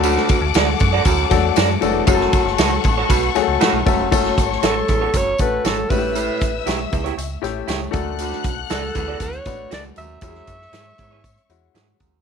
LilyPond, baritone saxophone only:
\new Staff \with { instrumentName = "Baritone saxophone" } { \clef bass \time 4/4 \key fis \minor \tempo 4 = 118 d,8. r4 r16 fis,8 r4 e,8 | fis,8. r4 r16 b,8 r8 a,8 fis,8 | fis,8. r8. e,8 fis,8 r4 g,8 | a,8. r8. e,8 r4. fis,8 |
d,8. r8. e,8 e,8 r4 fis,8 | fis,8. r8. e,8 r4. fis,8 | }